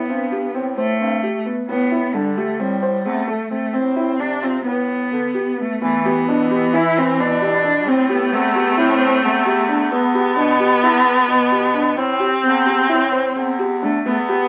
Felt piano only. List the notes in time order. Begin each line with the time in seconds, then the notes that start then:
0.09 C4
0.32 G4
0.54 C4
0.78 C5
1.01 C4
1.23 G4
1.46 B3
1.69 B3
1.92 E4
2.14 D4
2.37 G4
2.60 C4
2.82 C5
3.05 C4
3.27 A4
3.51 C4
3.73 C4
3.96 E4
4.19 C4
4.42 F4
4.65 B3
4.88 B4
5.11 B3
5.34 G4
5.58 B3
5.82 B3
6.05 G4
6.28 D4
6.51 G4
6.73 E4
6.96 B4
7.19 B3
7.42 G4
7.64 D4
7.87 C4
8.09 G4
8.32 C4
8.55 G4
8.77 E4
9.01 C5
9.23 C4
9.46 G4
9.69 D4
9.92 B3
10.14 G4
10.37 D4
10.60 G4
10.83 E4
11.06 B4
11.28 B3
11.52 G4
11.74 D4
11.97 C4
12.20 G4
12.43 C4
12.66 G4
12.89 E4
13.12 C5
13.36 C4
13.59 G4
13.82 D4
14.06 B3
14.29 G4